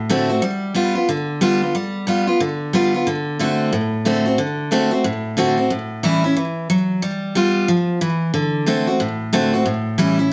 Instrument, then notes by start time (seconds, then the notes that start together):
steel-string acoustic guitar
Already playing: A2
0.10 D3 A3 C4 F#4
0.29 C4 F#4
0.42 G3
0.74 G3 B3 F4
0.95 B3 F4
1.09 D3
1.41 G3 B3 F4
1.62 B3 F4
1.75 G3
2.07 G3 B3 F4
2.27 B3 F4
2.40 D3
2.73 G3 B3 F4
2.94 B3 F4
3.07 D3
3.39 D3 A3 C4 F#4
3.73 A2
4.05 D3 A3 C4 F#4
4.26 C4 F#4
4.38 D3
4.71 D3 A3 C4 F#4
4.91 C4 F#4
5.04 A2
5.37 D3 A3 C4 F#4
5.57 C4 F#4
5.70 A2
6.03 E3 G3 C#4 E4
6.24 C#4 E4
6.37 E3
6.70 F#3
7.02 G3
7.35 G3 B3 F4
7.68 F3
8.01 E3
8.34 D3
8.66 D3 A3 C4 F#4
8.87 C4 F#4
9.00 A2
9.33 D3 A3 C4 F#4
9.53 C4 F#4
9.66 A2
9.98 E3 G3 C#4 E4
10.19 C#4 E4